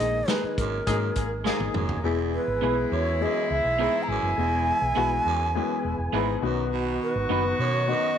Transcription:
Already playing: G#2 D#3 A#3 G#4 D#5
0.00 A#1 G#3 A#3 D#4 G#4, closed hi-hat
0.28 G#3 A#3 D#4 G#4 B4, snare, closed hi-hat
0.43 muted fingered electric bass stroke
0.58 G#1 F#2 A#4, kick, closed hi-hat
0.86 F#2 G#2 G#3 A#3 D#4 G#4, kick, closed hi-hat
1.16 G#1 A#3 D#4 G#4, kick, closed hi-hat
1.44 G#2 G#3 A#3 D#4 G#4, snare
1.60 G#1, high tom
1.74 F1 F#2, mid tom
1.89 floor tom
2.03 E1 E2 E3 G#3 B3 E4 G#4
2.35 B4
2.47 G#1
2.61 B1 G#3 B3 E4 G#4 B4
2.92 E2 F#2 C#5
3.20 F#2 G#3 B3 E4 G#4 D#5
3.46 D#5
3.50 C#2 E5
3.64 B1
3.79 G#2 G#3 B3 E4 G#4 B4
4.03 A#5
4.08 G#1 F#2 G#5
4.22 F#1
4.37 E1 E2 G#3 B3 E4 G#4
4.82 B1
4.95 B1 G#3 B3 E4 F#4 G#4 B4
5.26 E2 F#2
5.55 F#2 G#3 B3 E4 B4
5.84 E1
5.98 E1
6.13 G#1 G#2 G#3 B3 E4 G#4 B4
6.42 B1 F#2 D#3 B3 D#4 F#4 B4
6.72 B2
7.03 B4
7.16 G#1
7.29 F#1 B3 D#4 F#4 B4
7.59 F#2 B2 C#5
7.87 F#2 B3 D#4 F#4 B4 D#5

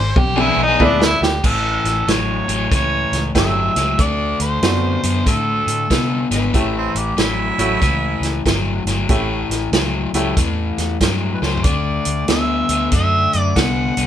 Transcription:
Already playing: G#1
0.00 C5
0.16 B1 G4, muted overdriven electric guitar stroke, kick, high tom
0.36 E3 B3 D4 G#4, high tom
0.41 E4
0.56 B1
0.63 D#4
0.68 E3 B3 D4 G#4
0.80 D2 G#3 B3 D4 E4 B4, kick, mid tom
0.84 D4
1.00 muted overdriven electric guitar stroke, snare
1.05 E4
1.21 D2 G4, snare
1.44 A1 A2 E3 A4, kick, crash
1.84 A1, snare, closed hi-hat
2.07 A1 A2 F#3 C#5, snare, closed hi-hat
2.48 A1 A2 F#3, closed hi-hat
2.71 C#2 A2 E3 C#5, kick, snare, closed hi-hat
3.12 C#2, snare, closed hi-hat
3.35 G1 A2 F#3 A3 C#4 E4 G4 E5, kick, snare, closed hi-hat
3.76 C#2 A2 F#3, snare, closed hi-hat
3.99 D2 D3 A3 D5, kick, closed hi-hat
4.40 D2 C5, closed hi-hat
4.62 F#2 D3 A3 B3 C4 D4 F#4, snare, closed hi-hat
5.03 F#2 D3 B3, closed hi-hat
5.26 A2 D3 A3 A4, kick, snare, closed hi-hat
5.67 A2, closed hi-hat
5.90 C3 D3 B3, kick, snare, closed hi-hat
6.31 G#1 D3 E3 B3, snare, closed hi-hat
6.53 A1 A2 E3 A3 C#4 E4 G4, kick, closed hi-hat
6.78 C4
6.95 A1 G4, closed hi-hat
7.17 A1 A2 F#3 E4, snare, closed hi-hat
7.58 A1 A2 F#3 A3 C#4 E4 F#4, closed hi-hat
7.81 C#2 A2 E3, kick, snare, closed hi-hat
8.20 C#2, snare, closed hi-hat
8.46 G1 A2 F#3, kick, snare, closed hi-hat
8.85 G1 A2 F#3, snare, closed hi-hat
9.09 A1 A2 E3 A3 C#4 E4 G4, kick, closed hi-hat
9.49 A1, snare, closed hi-hat
9.72 C#2 A2 F#3, snare, closed hi-hat
10.13 C#2 A2 F#3 A3 C#4 E4 G4, closed hi-hat
10.37 E2 A2 E3, kick, snare, closed hi-hat
10.78 E2, snare, closed hi-hat
11.01 G2 A2 F#3, kick, snare, closed hi-hat
11.33 B4
11.42 C#2 A2 F#3 C5, snare
11.57 floor tom
11.64 D2 D3 A3 D5, kick, closed hi-hat
12.05 D2, closed hi-hat
12.28 D2 D3 B3 E5, snare, closed hi-hat
12.69 D2 D3 B3, closed hi-hat
12.92 F#2 D3 A3 E5, kick, closed hi-hat
13.33 F#2, closed hi-hat
13.40 D5
13.56 C2 D3 B3 F#5, kick, snare, closed hi-hat
13.97 C2 D3 B3, closed hi-hat

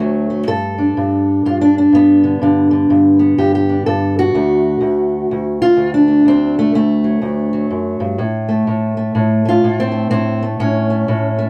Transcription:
Already playing: A3
0.00 D2 F#3
0.30 A3
0.47 G2 A4
0.78 D4
0.97 G2
1.45 G2 F4
1.61 D4
1.78 D4
1.92 G2 B3
2.24 D3
2.42 G2 D3
2.71 D3
2.90 G2
3.19 B3
3.38 G2 G4
3.55 G4
3.69 D4
3.86 G2 A4
4.19 F#4
4.35 D2 A3
4.81 D2
5.31 D2
5.62 F4
5.77 D2
5.94 D4
6.08 A3
6.25 D2 C4
6.59 A3
6.74 D2 A3
7.04 F#3
7.22 D2
7.53 F#3
7.70 F#2
8.00 G2
8.18 A2
8.49 A3
8.67 A2
8.97 A3
9.15 A2
9.45 A3 F4
9.63 A2 A3
9.80 C4
9.92 A3
10.10 A2 C4
10.42 A3
10.60 A2 C#4
10.90 A3
11.08 A2
11.39 A3

